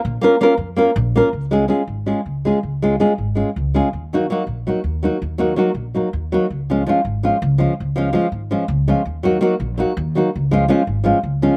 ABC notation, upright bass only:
X:1
M:7/8
L:1/8
Q:1/4=163
K:Bbm
V:1 name="Upright bass" clef=bass
B,,, z2 F,,2 B,,,2 | [K:Db] D,,3 A,,,2 D,,2 | D,,3 A,,,2 D,,2 | E,,3 B,,,2 E,,2 |
E,,3 B,,,2 E,,2 | D,,3 A,,,2 D,,2 | D,,3 A,,,2 D,,2 | E,,3 B,,,2 E,,2 |
D,,3 A,,,2 D,,2 |]